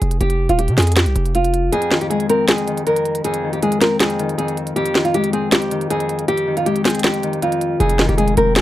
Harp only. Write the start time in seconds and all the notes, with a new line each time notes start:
1.73 F2
1.91 D#3
2.10 G#3
2.29 C4
2.48 F2
2.68 D#3
2.87 F2
3.24 F2
3.43 D#3
3.62 G#3
3.81 C4
4.00 F2
4.19 D#3
4.38 F2
4.76 F2
4.95 D#3
5.14 G#3
5.33 C4
5.52 F2
5.71 D#3
5.90 F2
6.28 F2
6.47 D#3
6.66 G#3
6.85 C4
7.04 F2
7.23 D#3
7.42 F2
7.80 F2
7.99 D#3
8.18 G#3
8.37 C4
8.56 F2